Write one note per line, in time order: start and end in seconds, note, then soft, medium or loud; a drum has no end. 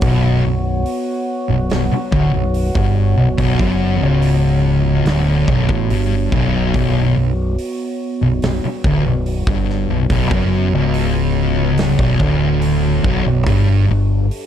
0.00 0.41 B0 loud
0.00 13.45 B3 medium
0.00 13.45 F#4 medium
0.00 13.45 C#5 medium
0.00 kick loud
0.00 open hi-hat medium
0.04 0.44 B1 medium
0.45 0.84 B0 medium
0.45 0.79 B1 medium
0.86 open hi-hat medium
1.50 1.69 B0 medium
1.50 1.71 B1 medium
1.70 1.91 B0 medium
1.70 1.90 B1 medium
1.70 snare loud
1.70 open hi-hat medium
1.91 muted distorted electric guitar stroke medium
1.91 muted fingered electric bass stroke soft
2.12 2.32 D1 loud
2.12 2.32 D2 loud
2.12 kick loud
2.34 2.73 B0 medium
2.34 2.67 B1 medium
2.54 open hi-hat medium
2.75 3.14 G1 medium
2.75 3.17 G2 loud
2.75 kick loud
3.18 3.37 B0 medium
3.18 3.38 B1 medium
3.38 3.58 B0 loud
3.38 3.58 B1 loud
3.38 kick loud
3.38 open hi-hat medium
3.59 3.98 F#1 medium
3.59 4.01 F#2 loud
3.59 kick loud
4.02 5.03 C#1 medium
4.02 5.06 C#2 loud
4.22 open hi-hat medium
5.06 5.45 D1 medium
5.06 5.48 D2 loud
5.06 snare loud
5.06 open hi-hat medium
5.48 5.68 B0 loud
5.48 5.69 B1 loud
5.48 kick loud
5.69 5.89 A1 medium
5.69 5.90 A2 loud
5.69 kick loud
5.90 6.30 G1 loud
5.90 6.32 G2 medium
5.90 open hi-hat medium
6.32 6.71 B0 medium
6.32 6.74 B1 loud
6.32 kick loud
6.74 7.14 B0 loud
6.74 7.15 B1 loud
6.74 kick loud
6.74 open hi-hat medium
7.17 7.56 B0 medium
7.17 7.50 B1 medium
7.59 open hi-hat medium
8.22 8.42 B0 medium
8.22 8.42 B1 medium
8.42 8.63 B0 medium
8.42 8.63 B1 medium
8.42 snare loud
8.42 open hi-hat medium
8.64 muted distorted electric guitar stroke medium
8.64 muted fingered electric bass stroke soft
8.84 9.04 D1 medium
8.84 9.05 D2 loud
8.84 kick loud
9.06 9.45 B0 medium
9.06 9.40 B1 medium
9.26 open hi-hat medium
9.47 9.86 G1 medium
9.47 9.89 G2 loud
9.47 kick loud
9.70 snare soft
9.90 10.10 B0 medium
9.90 10.10 B1 medium
10.10 10.30 B0 loud
10.10 10.31 B1 medium
10.10 kick loud
10.10 open hi-hat medium
10.31 10.71 F#1 medium
10.31 10.74 F#2 medium
10.31 kick loud
10.74 11.96 C#1 medium
10.74 12.00 C#2 loud
10.94 open hi-hat medium
11.78 snare loud
11.78 open hi-hat medium
11.99 12.19 B0 medium
11.99 12.20 B1 loud
11.99 kick loud
12.20 13.01 D1 medium
12.20 13.04 D2 loud
12.20 kick loud
12.62 open hi-hat medium
13.04 13.25 B0 medium
13.04 13.25 B1 loud
13.04 kick loud
13.26 13.46 B0 medium
13.26 13.48 B1 medium
13.47 13.86 G1 medium
13.47 13.89 G2 loud
13.47 14.46 G3 medium
13.47 14.46 D4 medium
13.47 14.46 A4 medium
13.47 kick loud
13.47 open hi-hat medium
13.90 14.29 G1 medium
13.90 14.24 G2 medium
14.31 open hi-hat medium